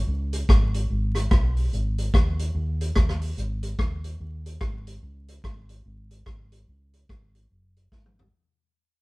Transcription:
0.07 C#2
0.33 closed hi-hat
0.49 G#1, kick, cross-stick
0.74 closed hi-hat
0.90 G#1
1.15 cross-stick, closed hi-hat
1.31 B1, kick, cross-stick
1.57 open hi-hat
1.72 G#1, hi-hat pedal
1.98 closed hi-hat
2.14 D#2, kick, cross-stick
2.39 closed hi-hat
2.55 D#2
2.81 closed hi-hat
2.96 D#2, kick, cross-stick
3.09 cross-stick
3.21 open hi-hat
3.37 G#1, hi-hat pedal
3.63 closed hi-hat
3.79 D#2, kick, cross-stick
4.04 closed hi-hat
4.20 D#2
4.46 closed hi-hat
4.61 G#1, kick, cross-stick
4.87 closed hi-hat
5.03 C#2
5.28 closed hi-hat
5.44 G#1, kick, cross-stick
5.69 closed hi-hat
5.85 G#1
6.11 closed hi-hat
6.26 G#1, kick, cross-stick
6.52 closed hi-hat
6.68 C#2
6.93 closed hi-hat
7.09 G#1, kick, cross-stick
7.35 closed hi-hat
7.50 F#1
7.76 closed hi-hat
7.92 G#1, kick, snare
8.06 mid tom
8.19 floor tom

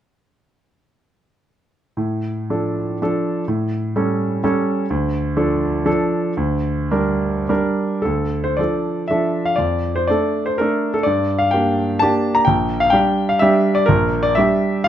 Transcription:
1.97 A2
2.50 F3 D4 A4
3.02 F3 D4 A4
3.48 A2
3.96 G3 C#4 A4
4.44 G3 C#4 A4
4.90 D2
5.37 F3 D4 A4
5.86 F3 D4 A4
6.37 D2
6.91 G3 D4 A#4
7.49 G3 D4 A#4
8.02 D2 A4
8.44 C5
8.57 F3 D4 A4 D5
9.08 F3 D4 A4 E5
9.46 F5
9.56 F2 D5
9.96 C5
10.08 A3 D4 A4 D5
10.46 C5
10.58 A3 D4 A4 A#4
10.94 A4
11.03 G2 D5
11.39 F5
11.51 A#3 D4 G4 G5
11.99 A#3 D4 G4 A5
12.35 A#5
12.45 A#1 G5
12.80 F5
12.90 G3 D4 G4 G5
13.29 F5
13.39 G3 D4 G4 E5
13.75 D5
13.86 A#1 A#4
14.23 D5
14.35 G3 D4 G4 E5
14.84 F5

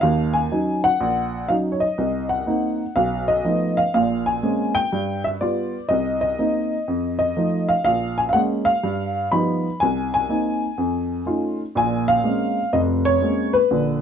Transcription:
0.01 D#2 D#3 F5
0.34 G#5
0.52 F#3 C#4 D#4
0.84 F#5
1.01 A#1
1.48 F#3 C#4 D#4 F5
1.72 C#5
1.80 D#5
1.98 C2
2.29 F#5
2.47 A#3 C4 D#4
2.96 B1 F5
3.28 D#5
3.44 F3 A3 B3 D#4
3.77 F5
3.94 A#1 A#2 F5
4.26 G#5
4.43 G#3 A#3 C4 C#4
4.75 G5
4.93 G2
5.24 E5
5.41 G3 B3 F4 D5
5.89 C2 D#5
6.21 D#5
6.39 A#3 C4 D#4
6.88 F2
7.19 D#5
7.37 F3 A3 D#4
7.69 F5
7.85 A#1 F5
8.18 G#5
8.29 F5 F#5
8.34 G#3 A#3 C#4
8.65 F5
8.83 G2
9.32 F3 G3 B3 D#4 B5
9.80 C2 G#5
10.14 G#5
10.29 A#3 C4 D#4
10.78 F2
11.26 A3 C#4 D#4 F4
11.75 A#1 A#2 G#5
12.08 F5
12.24 G#3 A#3 C4 C#4
12.73 F1 F2 D#5
13.05 C#5
13.22 G#3 A#3 C4 C#4
13.53 B4
13.71 A#1 D3

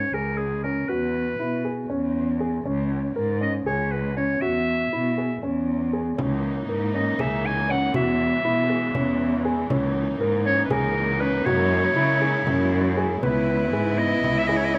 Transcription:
Already playing: C#5
0.13 C#2 G#4 A#4
0.38 G#4
0.63 C#4 A#4
0.88 E2 F#4 B4
1.40 B2 E4
1.65 G#4
1.90 E2 C#4
2.40 G#4
2.66 C#2 C#4
3.16 G#2 A#4
3.41 C#4 D#5
3.66 C#2 G#4 C#5
3.91 B4
4.17 C#4 C#5
4.41 E2 F#4 E5
4.92 B2 E4
5.18 G#4
5.43 E2 C#4
5.93 G#4
6.18 C#2 E3 A#3 C#4 D#4, frame drum
6.69 G#2 A#4
6.94 C#4 D#5
7.19 C#2 G#4 E5, frame drum
7.46 G#5
7.69 C#4 F#5
7.94 E2 C#3 G#3 F#4 E5, frame drum
8.45 B2 E4
8.70 G#4
8.95 E2 C#4, frame drum
9.45 G#4
9.70 C#2 A#3 C#4 D#4, frame drum
10.20 G#2 A#4
10.46 C#4 C#5
10.65 B4
10.70 C#2 G#4 A#4, frame drum
11.20 C#4 B4
11.45 F#2 G#3 E4 F#4 C#5, frame drum
11.71 frame drum
11.96 C#3 E4, frame drum
12.21 G#4
12.46 F#2 C#4, frame drum
12.97 G#4, frame drum
13.22 C#2 C#3 B3 E4 B4, frame drum
13.49 frame drum
13.73 G#2 G#4, frame drum
13.98 B3 D#5
14.23 C#2, frame drum
14.38 E5
14.47 G#4 D#5
14.57 C#5
14.65 D#5
14.74 C#4 C#5, frame drum

